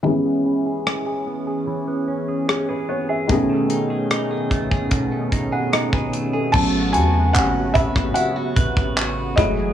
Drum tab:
CC |----------------|----------------|x---------------|
HH |----------------|x-x-x-x-x-x-x-x-|--x-x-x-x-x-x-x-|
CP |----------------|----------------|----x-------x---|
SD |----r-------r---|----r-------r---|-------r--------|
BD |----------------|o-----ooo-o--o--|o-----oo--oo--o-|